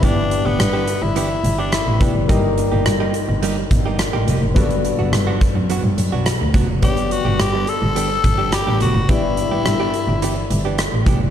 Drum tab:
HH |x-x-x-x-x-x-x-x-|x-x-x-x-x-x-x-x-|xxx-x-x-x-x-x-x-|xxx-x-x-x-x-x-x-|
SD |----r-------r---|----r-------r---|----r-------r---|----r-------r---|
BD |o-------------o-|o---------o-----|o-----o-------o-|o---------o-----|

HH |x-x-x-x-x-x-x-x-|
SD |----r-------r---|
BD |o-------------o-|